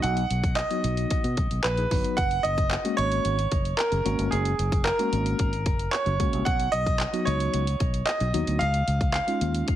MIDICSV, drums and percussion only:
0, 0, Header, 1, 2, 480
1, 0, Start_track
1, 0, Key_signature, 6, "major"
1, 0, Tempo, 535714
1, 33, Time_signature, 4, 2, 24, 8
1, 8742, End_track
2, 0, Start_track
2, 0, Title_t, "Drums"
2, 32, Note_on_c, 9, 42, 84
2, 121, Note_off_c, 9, 42, 0
2, 150, Note_on_c, 9, 42, 54
2, 240, Note_off_c, 9, 42, 0
2, 273, Note_on_c, 9, 42, 73
2, 363, Note_off_c, 9, 42, 0
2, 390, Note_on_c, 9, 36, 93
2, 394, Note_on_c, 9, 42, 51
2, 480, Note_off_c, 9, 36, 0
2, 484, Note_off_c, 9, 42, 0
2, 509, Note_on_c, 9, 39, 114
2, 511, Note_on_c, 9, 42, 87
2, 599, Note_off_c, 9, 39, 0
2, 600, Note_off_c, 9, 42, 0
2, 632, Note_on_c, 9, 42, 61
2, 722, Note_off_c, 9, 42, 0
2, 753, Note_on_c, 9, 42, 76
2, 843, Note_off_c, 9, 42, 0
2, 872, Note_on_c, 9, 42, 55
2, 961, Note_off_c, 9, 42, 0
2, 990, Note_on_c, 9, 42, 82
2, 994, Note_on_c, 9, 36, 93
2, 1080, Note_off_c, 9, 42, 0
2, 1084, Note_off_c, 9, 36, 0
2, 1113, Note_on_c, 9, 42, 52
2, 1202, Note_off_c, 9, 42, 0
2, 1229, Note_on_c, 9, 42, 65
2, 1232, Note_on_c, 9, 36, 92
2, 1319, Note_off_c, 9, 42, 0
2, 1321, Note_off_c, 9, 36, 0
2, 1352, Note_on_c, 9, 42, 49
2, 1441, Note_off_c, 9, 42, 0
2, 1471, Note_on_c, 9, 39, 113
2, 1473, Note_on_c, 9, 42, 88
2, 1561, Note_off_c, 9, 39, 0
2, 1562, Note_off_c, 9, 42, 0
2, 1590, Note_on_c, 9, 42, 50
2, 1680, Note_off_c, 9, 42, 0
2, 1713, Note_on_c, 9, 46, 80
2, 1714, Note_on_c, 9, 36, 87
2, 1803, Note_off_c, 9, 46, 0
2, 1804, Note_off_c, 9, 36, 0
2, 1832, Note_on_c, 9, 42, 55
2, 1921, Note_off_c, 9, 42, 0
2, 1951, Note_on_c, 9, 42, 80
2, 1952, Note_on_c, 9, 36, 115
2, 2041, Note_off_c, 9, 36, 0
2, 2041, Note_off_c, 9, 42, 0
2, 2069, Note_on_c, 9, 42, 52
2, 2159, Note_off_c, 9, 42, 0
2, 2192, Note_on_c, 9, 42, 73
2, 2282, Note_off_c, 9, 42, 0
2, 2310, Note_on_c, 9, 36, 91
2, 2314, Note_on_c, 9, 42, 53
2, 2399, Note_off_c, 9, 36, 0
2, 2404, Note_off_c, 9, 42, 0
2, 2429, Note_on_c, 9, 39, 114
2, 2431, Note_on_c, 9, 42, 87
2, 2519, Note_off_c, 9, 39, 0
2, 2520, Note_off_c, 9, 42, 0
2, 2553, Note_on_c, 9, 42, 62
2, 2642, Note_off_c, 9, 42, 0
2, 2674, Note_on_c, 9, 42, 73
2, 2763, Note_off_c, 9, 42, 0
2, 2792, Note_on_c, 9, 42, 55
2, 2882, Note_off_c, 9, 42, 0
2, 2911, Note_on_c, 9, 42, 82
2, 3000, Note_off_c, 9, 42, 0
2, 3035, Note_on_c, 9, 42, 54
2, 3124, Note_off_c, 9, 42, 0
2, 3150, Note_on_c, 9, 42, 69
2, 3152, Note_on_c, 9, 36, 92
2, 3239, Note_off_c, 9, 42, 0
2, 3242, Note_off_c, 9, 36, 0
2, 3273, Note_on_c, 9, 42, 47
2, 3363, Note_off_c, 9, 42, 0
2, 3392, Note_on_c, 9, 39, 122
2, 3394, Note_on_c, 9, 42, 89
2, 3482, Note_off_c, 9, 39, 0
2, 3483, Note_off_c, 9, 42, 0
2, 3511, Note_on_c, 9, 42, 50
2, 3600, Note_off_c, 9, 42, 0
2, 3634, Note_on_c, 9, 42, 79
2, 3724, Note_off_c, 9, 42, 0
2, 3753, Note_on_c, 9, 42, 55
2, 3843, Note_off_c, 9, 42, 0
2, 3873, Note_on_c, 9, 42, 84
2, 3962, Note_off_c, 9, 42, 0
2, 3991, Note_on_c, 9, 42, 54
2, 4080, Note_off_c, 9, 42, 0
2, 4114, Note_on_c, 9, 42, 77
2, 4203, Note_off_c, 9, 42, 0
2, 4231, Note_on_c, 9, 36, 96
2, 4236, Note_on_c, 9, 42, 51
2, 4321, Note_off_c, 9, 36, 0
2, 4326, Note_off_c, 9, 42, 0
2, 4350, Note_on_c, 9, 39, 112
2, 4352, Note_on_c, 9, 42, 85
2, 4440, Note_off_c, 9, 39, 0
2, 4441, Note_off_c, 9, 42, 0
2, 4474, Note_on_c, 9, 42, 60
2, 4563, Note_off_c, 9, 42, 0
2, 4594, Note_on_c, 9, 42, 73
2, 4683, Note_off_c, 9, 42, 0
2, 4712, Note_on_c, 9, 42, 57
2, 4802, Note_off_c, 9, 42, 0
2, 4830, Note_on_c, 9, 42, 82
2, 4834, Note_on_c, 9, 36, 96
2, 4920, Note_off_c, 9, 42, 0
2, 4924, Note_off_c, 9, 36, 0
2, 4954, Note_on_c, 9, 42, 55
2, 5043, Note_off_c, 9, 42, 0
2, 5070, Note_on_c, 9, 42, 65
2, 5072, Note_on_c, 9, 36, 89
2, 5160, Note_off_c, 9, 42, 0
2, 5162, Note_off_c, 9, 36, 0
2, 5192, Note_on_c, 9, 42, 50
2, 5281, Note_off_c, 9, 42, 0
2, 5312, Note_on_c, 9, 39, 113
2, 5314, Note_on_c, 9, 42, 88
2, 5402, Note_off_c, 9, 39, 0
2, 5403, Note_off_c, 9, 42, 0
2, 5431, Note_on_c, 9, 42, 50
2, 5520, Note_off_c, 9, 42, 0
2, 5554, Note_on_c, 9, 42, 79
2, 5555, Note_on_c, 9, 36, 84
2, 5643, Note_off_c, 9, 42, 0
2, 5644, Note_off_c, 9, 36, 0
2, 5673, Note_on_c, 9, 42, 56
2, 5762, Note_off_c, 9, 42, 0
2, 5792, Note_on_c, 9, 36, 117
2, 5792, Note_on_c, 9, 42, 81
2, 5881, Note_off_c, 9, 42, 0
2, 5882, Note_off_c, 9, 36, 0
2, 5910, Note_on_c, 9, 42, 57
2, 5999, Note_off_c, 9, 42, 0
2, 6033, Note_on_c, 9, 42, 73
2, 6123, Note_off_c, 9, 42, 0
2, 6151, Note_on_c, 9, 36, 98
2, 6154, Note_on_c, 9, 42, 51
2, 6240, Note_off_c, 9, 36, 0
2, 6244, Note_off_c, 9, 42, 0
2, 6270, Note_on_c, 9, 39, 111
2, 6272, Note_on_c, 9, 42, 87
2, 6360, Note_off_c, 9, 39, 0
2, 6361, Note_off_c, 9, 42, 0
2, 6394, Note_on_c, 9, 42, 60
2, 6484, Note_off_c, 9, 42, 0
2, 6515, Note_on_c, 9, 42, 74
2, 6604, Note_off_c, 9, 42, 0
2, 6633, Note_on_c, 9, 42, 55
2, 6723, Note_off_c, 9, 42, 0
2, 6752, Note_on_c, 9, 42, 86
2, 6842, Note_off_c, 9, 42, 0
2, 6875, Note_on_c, 9, 42, 57
2, 6965, Note_off_c, 9, 42, 0
2, 6991, Note_on_c, 9, 42, 65
2, 6993, Note_on_c, 9, 36, 92
2, 7081, Note_off_c, 9, 42, 0
2, 7082, Note_off_c, 9, 36, 0
2, 7113, Note_on_c, 9, 42, 49
2, 7202, Note_off_c, 9, 42, 0
2, 7232, Note_on_c, 9, 39, 121
2, 7233, Note_on_c, 9, 42, 86
2, 7321, Note_off_c, 9, 39, 0
2, 7323, Note_off_c, 9, 42, 0
2, 7351, Note_on_c, 9, 42, 52
2, 7440, Note_off_c, 9, 42, 0
2, 7474, Note_on_c, 9, 42, 81
2, 7563, Note_off_c, 9, 42, 0
2, 7592, Note_on_c, 9, 42, 57
2, 7682, Note_off_c, 9, 42, 0
2, 7712, Note_on_c, 9, 42, 81
2, 7802, Note_off_c, 9, 42, 0
2, 7830, Note_on_c, 9, 42, 52
2, 7919, Note_off_c, 9, 42, 0
2, 7953, Note_on_c, 9, 42, 74
2, 8043, Note_off_c, 9, 42, 0
2, 8070, Note_on_c, 9, 36, 91
2, 8074, Note_on_c, 9, 42, 49
2, 8160, Note_off_c, 9, 36, 0
2, 8163, Note_off_c, 9, 42, 0
2, 8189, Note_on_c, 9, 39, 110
2, 8190, Note_on_c, 9, 42, 85
2, 8279, Note_off_c, 9, 39, 0
2, 8280, Note_off_c, 9, 42, 0
2, 8313, Note_on_c, 9, 42, 64
2, 8403, Note_off_c, 9, 42, 0
2, 8434, Note_on_c, 9, 42, 73
2, 8524, Note_off_c, 9, 42, 0
2, 8552, Note_on_c, 9, 42, 53
2, 8642, Note_off_c, 9, 42, 0
2, 8670, Note_on_c, 9, 42, 81
2, 8675, Note_on_c, 9, 36, 96
2, 8742, Note_off_c, 9, 36, 0
2, 8742, Note_off_c, 9, 42, 0
2, 8742, End_track
0, 0, End_of_file